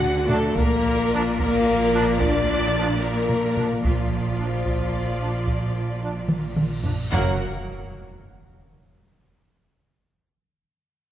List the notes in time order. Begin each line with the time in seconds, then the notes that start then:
Already playing: D2 D3 F#4 D5 F#5
0.02 taiko low-mid
0.27 F#3 A3 D4 A4, taiko low-mid
0.54 A#2 A#3 F4 A#4 D5, taiko
0.58 A#1
0.83 taiko low-mid
1.14 F3 D4
1.38 A#3 A#4, taiko
1.95 F3 D4
2.20 D4 D5, taiko
2.78 F3 D4
3.01 A#3 A#4
3.29 taiko low-mid
3.57 F3 D4, taiko low-mid
3.83 A#1 A#2 F3 F4 D5, taiko, reverse cymbal
4.11 taiko low-mid
4.39 F3 D4
4.65 taiko
5.20 F3 D4
5.47 taiko
6.02 F3 D4
6.29 taiko mid
6.56 taiko mid
6.83 F3 D4, taiko low
7.11 F#1 F#2 F#3 A#3 F#4 A#4 F#5, taiko low, impact